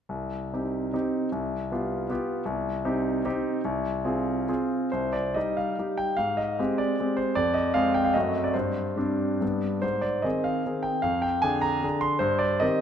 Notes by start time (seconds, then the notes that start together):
0.09 C2
0.54 C4 D#4 G4
0.93 C4 D#4 G4
1.32 C2
1.72 B3 F4 G4
2.09 B3 F4 G4
2.45 C2
2.85 C4 D#4 G4
3.25 C4 D#4 G4
3.65 C2
4.05 C4 F4 G#4
4.49 C4 F4 G#4
4.92 C2 C5
5.13 D5
5.34 G3 D#4 G4 D#5
5.57 F5
5.79 G3 D#4 G4
5.98 G5
6.17 G#2 F5
6.37 D#5
6.59 G#3 C4 G4
6.78 D5
7.00 G#3 C4 G4
7.17 C5
7.35 F2 D5
7.54 D#5
7.74 G#3 C4 G#4 F5
7.94 G5
8.04 F5
8.14 F#2 A3 C4 F#4 D#5
8.44 D5
8.54 G2 C5
8.96 G3 C4 D4
9.41 G2 G3 B3 D4
9.82 G#2 C5
10.01 D5
10.22 D#3 C4 G#4 D#5
10.44 F5
10.66 D#3 C4 G#4
10.83 G5
11.02 F2 F5
11.22 G5
11.42 D3 D4 G#4 G#5
11.62 A#5
11.83 D3 D4 G#4
12.01 C6
12.19 G2 C5
12.39 D5
12.60 D#3 C4 G4 D#5